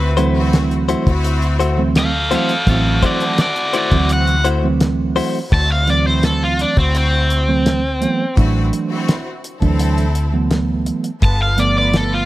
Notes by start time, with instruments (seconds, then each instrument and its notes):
Already playing: fingered electric bass D2, overdriven electric guitar B4
0.17 tine electric piano E3 F#3 A3 C4, clean electric guitar A3 E4 F#4 C5, closed hi-hat
0.36 string section C4 E4 F#4
0.53 snare, closed hi-hat
0.71 closed hi-hat
0.89 clean electric guitar A3 E4 F#4 C5, closed hi-hat
1.06 fingered electric bass D2, string section C4 E4 F#4, kick, closed hi-hat
1.24 closed hi-hat
1.42 closed hi-hat
1.59 clean electric guitar A3 E4 F#4 C5, closed hi-hat
1.77 tine electric piano E3 F#3 A3 C4
1.95 overdriven electric guitar A4 F5, snare, closed hi-hat
2.31 tine electric piano E3 F#3 A3 C4, clean electric guitar A3 E4 F#4 C5, overdriven electric guitar A4, closed hi-hat
2.35 overdriven electric guitar F5
2.49 closed hi-hat
2.67 fingered electric bass A1, tine electric piano E3 F#3 A3 C4, string section C4 E4 F#4, overdriven electric guitar A4 F5, kick, closed hi-hat
3.03 clean electric guitar A3 E4 F#4 C5, overdriven electric guitar F#4 D5, kick, closed hi-hat
3.20 string section C4 E4 A4, closed hi-hat
3.38 overdriven electric guitar F#4 D5, snare, closed hi-hat
3.56 closed hi-hat
3.73 clean electric guitar A3 E4 F#4 C5, overdriven electric guitar F#4, closed hi-hat
3.77 overdriven electric guitar D5
3.91 fingered electric bass D2, tine electric piano E3 F#3 A3 C4, string section C4 E4 F#4, kick, closed hi-hat
4.09 overdriven electric guitar F#5, closed hi-hat
4.28 closed hi-hat
4.45 clean electric guitar A3 E4 F#4 C5, closed hi-hat
4.63 tine electric piano E3 F#3 A3 C4
4.81 snare, closed hi-hat
5.16 clean electric guitar A3 E4 F#4 C5, open hi-hat
5.51 fingered electric bass D2, string section C4 E4 F#4, overdriven electric guitar A5, kick, crash
5.72 overdriven electric guitar F5
5.87 tine electric piano E3 F#3 A3 C4, overdriven electric guitar D5, closed hi-hat
6.05 string section C4 E4 F#4, overdriven electric guitar C5
6.23 overdriven electric guitar A4, snare, closed hi-hat
6.43 overdriven electric guitar F4
6.59 overdriven electric guitar D4, closed hi-hat
6.76 fingered electric bass D2, string section C4 E4 F#4, overdriven electric guitar C4, kick, closed hi-hat
6.95 overdriven electric guitar C4, closed hi-hat
7.30 closed hi-hat
7.48 tine electric piano E3 F#3 A3 C4
7.66 snare, closed hi-hat
8.01 tine electric piano E3 F#3 A3 B3, closed hi-hat
8.36 fingered electric bass A1, tine electric piano E3 F#3 A3 D4, string section C4 E4 F#4, kick, closed hi-hat
8.73 closed hi-hat
8.90 string section C4 E4 F#4
9.08 snare, closed hi-hat
9.44 closed hi-hat
9.61 fingered electric bass D2, tine electric piano E3 F#3 A3 D4, string section C4 E4 A4, kick, closed hi-hat
9.79 closed hi-hat
9.98 closed hi-hat
10.15 closed hi-hat
10.32 tine electric piano E3 F#3 A3 B3
10.51 snare, closed hi-hat
10.86 closed hi-hat
11.04 closed hi-hat
11.22 fingered electric bass G1, string section B3 F4 A4, overdriven electric guitar A5, kick, closed hi-hat
11.42 overdriven electric guitar F5
11.57 tine electric piano D3 F3 A3 B3, overdriven electric guitar D5, closed hi-hat
11.76 string section B3 F4 B4, overdriven electric guitar D5
11.94 overdriven electric guitar A4, snare, closed hi-hat
12.14 overdriven electric guitar F4